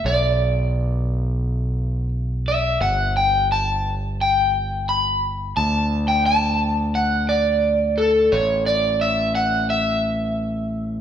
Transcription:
X:1
M:4/4
L:1/16
Q:1/4=87
K:Glyd
V:1 name="Overdriven electric guitar"
d12 z2 e2 | f2 g2 a4 g4 b4 | a3 g a4 f2 d4 A2 | c2 d2 e2 f2 e8 |]
V:2 name="Fingered electric bass" clef=bass
B,,,16 | G,,,16 | D,,16 | A,,,16 |]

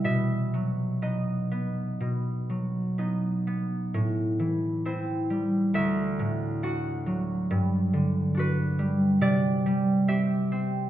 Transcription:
X:1
M:4/4
L:1/8
Q:1/4=68
K:Bphr
V:1 name="Harp"
[de]2 ^d6 | z2 c2 e2 f2- | f2 B2 d2 e2 |]
V:2 name="Harp"
B,, F, [B,^D] B, B,, F, [B,D] B, | A,, E, [CE] G, D,, A,, [DF] F, | G,, D, [DF] G, C, G, [CG] C |]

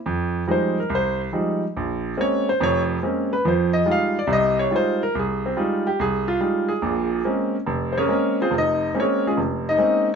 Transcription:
X:1
M:4/4
L:1/8
Q:"Swing" 1/4=142
K:Fm
V:1 name="Grand piano"
z2 c B c z3 | z2 d c d z2 =B | c e f =d e _d c B | A C z G A F z A- |
A2 z3 [DABcd]2 [CFAc] | [Ee]2 [DABd] [A,DFA] z [Ee]2 z |]
V:2 name="Grand piano" clef=bass
F,,2 [F,G,A,E] z C,,2 [F,G,A,E] z | B,,,2 [A,B,CD] z [F,,,F,,]2 [A,B,CD] z | [F,,F,]2 [G,A,EF] z [C,,C,]2 [G,A,EF] z | C,,2 [G,A,EF] z C,,2 [G,A,EF] z |
[B,,,B,,]2 [A,B,CD] z F,,,2 [A,B,CD] z | F,,,2 [A,B,CD] z F,,,2 [A,B,CD] z |]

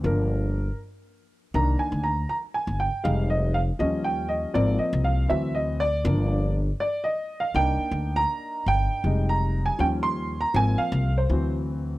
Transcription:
X:1
M:4/4
L:1/16
Q:"Swing 16ths" 1/4=80
K:Cm
V:1 name="Upright piano"
B4 z4 (3b2 a2 b2 (3b2 a2 g2 | (3f2 e2 f2 (3e2 g2 e2 (3d2 e2 f2 (3=e2 _e2 d2- | d3 z d e2 f g3 b3 g2- | g b2 a g c'2 b a f2 c2 z3 |]
V:2 name="Upright piano"
[F,B,D]2 z6 [E,B,D]2 z6 | [G,A,E]2 z2 [F,G,_D]4 [F,B,C]4 [=E,^F,C]2 z2 | [F,B,D]2 z6 [B,DE]8 | [G,A,E]4 [F,G,_D]2 z2 [F,B,C]2 z2 [=E,^F,C]4 |]
V:3 name="Upright bass" clef=bass
G,,,4 z4 C,, z D,,2 z2 G,,, z | F,,,4 E,,4 A,,, z C,,2 D,,4 | G,,,4 z4 C,, z D,,2 z2 G,,, z | F,,,4 E,,4 A,,, z C,,2 D,,4 |]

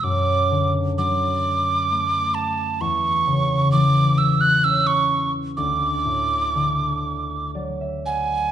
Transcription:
X:1
M:3/4
L:1/16
Q:1/4=64
K:Dlyd
V:1 name="Tin whistle"
d'3 z d'6 a2 | c'4 d'2 e' f' e' c'2 z | d'8 z2 g2 |]
V:2 name="Harp"
z12 | z12 | z8 d e f2 |]
V:3 name="Harp" clef=bass
F,,2 D,2 F,4 A,4 | E,,2 C,2 E,4 C4 | D,,2 A,,2 D,4 F,4 |]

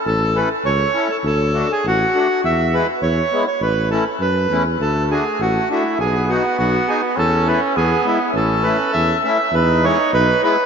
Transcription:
X:1
M:2/4
L:1/16
Q:1/4=101
K:A
V:1 name="Accordion"
A2 B2 c3 A | A3 G F4 | e2 B2 c3 c | B2 A2 B3 z |
A2 G2 F2 E2 | G2 F2 F2 G2 | A2 B2 G2 E2 | A2 B2 e2 e2 |
[K:E] B2 c2 B2 B2 |]
V:2 name="Accordion"
z2 [CEA]2 z2 [CEA]2 | z2 [A,DF]2 z2 [A,DF]2 | z2 [G,B,E]2 z2 [G,B,E]2 | z2 [A,CE]2 z2 [A,CE]2 |
z2 [A,DF]2 z2 [A,DF]2 | z2 [B,^DF]2 z2 [B,DF]2 | z2 [A,B,E]2 z2 [G,B,E]2 | z2 [A,CE]2 z2 [A,CE]2 |
[K:E] z2 [G,B,E]2 z2 [G,B,E]2 |]
V:3 name="Trumpet"
z8 | z8 | z8 | z8 |
A,8 | B,8 | C4 B,4 | C6 z2 |
[K:E] D8 |]
V:4 name="Tuba" clef=bass
A,,,4 C,,2 z2 | D,,4 A,,,2 z2 | E,,4 E,,2 z2 | A,,,4 F,,2 E,,2 |
D,,4 A,,,2 z2 | B,,,4 B,,,2 z2 | E,,4 E,,2 z2 | A,,,4 E,,2 z2 |
[K:E] E,,4 B,,,2 z2 |]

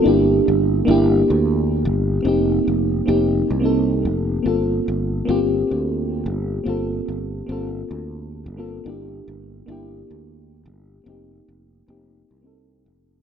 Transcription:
X:1
M:4/4
L:1/16
Q:"Swing 16ths" 1/4=109
K:Gm
V:1 name="FM electric piano"
[B,D=EG]6 [B,DEG]8- [B,DEG]2 | [B,CEG]6 [B,CEG]4 [B,CEA]6 | [B,CFA]6 [B,CFG]8- [B,CFG]2 | [B,CFA]6 [B,CFA]8 [B,CFA]2 |
[B,D=EG]6 [B,DEG]8- [B,DEG]2 | [B,CEG]6 [B,CEG]4 [B,CEA]6 |]
V:2 name="Fretless electric bass" clef=bass
G,,,2 z G,,,2 z G,,,2 z D,,4 G,,,2 z | F,,,2 z F,,,2 z F,,,2 z C,,4 F,,,2 z | G,,,2 z G,,,2 z G,,,2 z D,,4 G,,,2 z | G,,,2 z G,,,2 z G,,,2 z D,,4 G,,,2 z |
G,,,2 z G,,,2 z G,,,2 z D,,4 G,,,2 z | F,,,2 z F,,,2 z F,,,2 z C,,4 F,,,2 z |]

